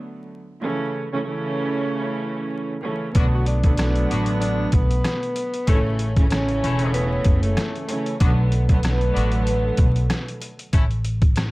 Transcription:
Already playing: D3 F#3 A3 B3
0.62 C#3 E3 A3 C#4
1.12 C#3 E3 A3 C#4
1.25 C#3 E3 A3 C#4
2.83 C#3 E3 A3 C#4
3.14 B1 D3 F#3 A3 B3 D4 F#4, kick, closed hi-hat
3.34 F#4
3.46 D4, closed hi-hat
3.64 D3 F#3 A3 B3, kick, closed hi-hat
3.76 D3 F#3 A3 B3, cross-stick, snare, closed hi-hat
3.96 closed hi-hat
4.10 A1 B3 D4 F#4, closed hi-hat
4.26 closed hi-hat
4.40 D4, closed hi-hat
4.72 B1 B3, kick, closed hi-hat
4.91 closed hi-hat
5.04 cross-stick, snare, closed hi-hat
5.23 closed hi-hat
5.36 closed hi-hat
5.54 closed hi-hat
5.67 A1 C#3 E3 A3 C#4 E4, kick, closed hi-hat
5.99 closed hi-hat
6.16 C#3 E3 A3 C#4, kick, closed hi-hat
6.30 C#3 E3 A3 C#4, cross-stick, snare, closed hi-hat
6.49 closed hi-hat
6.63 E1 A3 C#4 E4, closed hi-hat
6.79 closed hi-hat
6.93 B3, closed hi-hat
7.25 F#1, kick, closed hi-hat
7.43 A3, closed hi-hat
7.57 cross-stick, snare, closed hi-hat
7.76 closed hi-hat
7.89 C#3 E3 A3 C#4, closed hi-hat
8.06 closed hi-hat
8.19 B1 D3 F#3 A3 B3 D4 F#4, kick, closed hi-hat
8.52 closed hi-hat
8.69 D3 F#3 A3 B3, kick, closed hi-hat
8.82 D3 F#3 A3 B3, cross-stick, snare, closed hi-hat
9.01 closed hi-hat
9.14 A1 B3 D4 F#4, closed hi-hat
9.32 closed hi-hat
9.47 closed hi-hat
9.77 B1, kick, closed hi-hat
9.96 closed hi-hat
10.10 cross-stick, snare, closed hi-hat
10.28 closed hi-hat
10.42 closed hi-hat
10.59 closed hi-hat
10.73 A1 A3 C#4 E4, kick, closed hi-hat
10.91 closed hi-hat
11.05 closed hi-hat
11.22 kick, closed hi-hat
11.36 cross-stick, snare, closed hi-hat

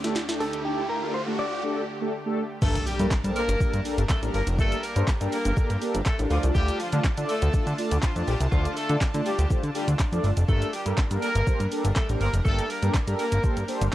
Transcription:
Already playing: D2 D3 A3 G4, riser
0.04 A3 D4 G4 A4, snare, closed hi-hat
0.16 snare, clap
0.29 A3 D4 G4 A4, snare, closed hi-hat
0.40 A4, open hi-hat
0.53 closed hi-hat
0.65 A3 D4 G4 A4
0.90 A#4
1.02 A3 D4 G4 A4
1.14 C5
1.27 A3 D4 G4 A4
1.39 D5
1.63 A3 D4 G4 A4
2.01 A3 D4 G4 A4
2.25 A3 D4 G4 A4
2.62 G1 G3 A3 A#3 D4 G4 A4 A#4 A5, kick, crash, impact, shaker
2.75 closed hi-hat, shaker
2.87 G3 G4, open hi-hat, shaker
2.99 G2 A#3 D4 G4 A4 A#4, closed hi-hat, shaker
3.11 G2, kick, snare, clap, shaker
3.24 G2 A#3 D4 G4 A4 C5, closed hi-hat, shaker
3.36 A#3 A#4, open hi-hat, shaker
3.48 G1, closed hi-hat, shaker
3.60 G2 A#3 D4 G4 A4 A#4, kick, shaker
3.73 G2, closed hi-hat, shaker
3.85 A#3 D4 G4 A4 A#4, open hi-hat, shaker
3.98 G1, closed hi-hat, shaker
4.09 A3 A4, kick, snare, clap, shaker
4.22 A1 A#3 D4 G4 A4 A#4, closed hi-hat, shaker
4.34 G1 A#3 A#4, open hi-hat, shaker
4.47 F1, closed hi-hat, shaker
4.58 G1 A3 A#3 D4 G4 A4 A#4, kick, shaker
4.72 closed hi-hat, shaker
4.83 A#3 A#4, open hi-hat, shaker
4.96 G2 A#3 D4 G4 A4 C5, closed hi-hat, shaker
5.08 G2, kick, snare, clap, shaker
5.20 G2 A#3 D4 G4 A4 A#4, closed hi-hat, shaker
5.32 A#3 A#4, open hi-hat, shaker
5.45 G1, closed hi-hat, shaker
5.57 G2 A#3 D4 G4 A4 A#4, kick, shaker
5.70 G2, closed hi-hat, shaker
5.81 A#3 D4 G4 A4 A#4, open hi-hat, shaker
5.95 G1, closed hi-hat, shaker
6.06 A3 A4, kick, snare, clap, shaker
6.19 A1 A#3 D4 G4 A4 A#4, closed hi-hat, shaker
6.30 D2 D3 F3 A3 D4 F4 A4 D5 A5, open hi-hat, shaker
6.43 C2, closed hi-hat, shaker
6.55 D2 G3 G4, kick, shaker
6.68 closed hi-hat, shaker
6.80 F3 F4, open hi-hat, shaker
6.92 D3 A3 D4 F4 A4 D5, closed hi-hat, shaker
7.04 D3, kick, snare, clap, shaker
7.17 D3 A3 D4 F4 A4 D5, closed hi-hat, shaker
7.29 A3 A4, open hi-hat, shaker
7.42 D2, closed hi-hat, shaker
7.53 D3 A3 D4 F4 A4 D5, kick, shaker
7.67 D3, closed hi-hat, shaker
7.78 A3 D4 F4 A4 D5, open hi-hat, shaker
7.91 D2, closed hi-hat, shaker
8.02 F3 F4, kick, snare, clap, shaker
8.15 F2 A3 D4 F4 A4 D5, closed hi-hat, shaker
8.27 A#1 G3 G4, open hi-hat, shaker
8.40 C2, closed hi-hat, shaker
8.52 D2 F3 A3 D4 F4 A4 D5, kick, shaker
8.65 closed hi-hat, shaker
8.77 A3 A4, open hi-hat, shaker
8.89 D3 A3 D4 F4 A4 D5, closed hi-hat, shaker
9.01 D3, kick, snare, clap, shaker
9.14 D3 A3 D4 F4 A4 D5, closed hi-hat, shaker
9.26 G3 G4, open hi-hat, shaker
9.39 D2, closed hi-hat, shaker
9.50 D3 A3 D4 F4 A4 C5, kick, shaker
9.63 D3, closed hi-hat, shaker
9.75 G3 A3 D4 F4 G4 A4 D5, open hi-hat, shaker
9.88 D2, closed hi-hat, shaker
9.99 kick, snare, clap, shaker
10.12 F2 A3 D4 F4 A4 D5, closed hi-hat, shaker
10.24 G1, open hi-hat, shaker
10.37 F1, closed hi-hat, shaker
10.48 G1 G3 A3 A#3 D4 G4 A4 A#4, kick, shaker
10.62 closed hi-hat, shaker
10.73 G3 G4, open hi-hat, shaker
10.86 G2 A#3 D4 G4 A4 A#4, closed hi-hat, shaker
10.98 G2, kick, snare, clap, shaker
11.10 G2 A#3 D4 G4 A4 A#4, closed hi-hat, shaker
11.22 A#3 A#4, open hi-hat, shaker
11.35 G1, closed hi-hat, shaker
11.47 G2 A#3 D4 G4 A4 C5, kick, shaker
11.60 G2, closed hi-hat, shaker
11.71 A#3 D4 G4 A4 A#4, open hi-hat, shaker
11.85 G1, closed hi-hat, shaker
11.96 A3 A4, kick, snare, clap, shaker
12.09 A1 A#3 D4 G4 A4 C5, closed hi-hat, shaker
12.21 G1 A#3 A#4, open hi-hat, shaker
12.34 F1, closed hi-hat, shaker
12.45 G1 A3 A#3 D4 G4 A4 A#4, kick, shaker
12.59 closed hi-hat, shaker
12.70 A#3 A#4, open hi-hat, shaker
12.83 G2 A#3 D4 G4 A4 A#4, closed hi-hat, shaker
12.94 G2, kick, snare, clap, shaker
13.07 G2 A#3 D4 G4 A4 A#4, closed hi-hat, shaker
13.19 A#3 A#4, open hi-hat, shaker
13.32 G1, closed hi-hat, shaker
13.43 G2 A#3 D4 G4 A4 C5, kick, shaker
13.57 G2, closed hi-hat, shaker
13.68 A#3 D4 G4 A4 C5, open hi-hat, shaker
13.81 G1, closed hi-hat, shaker

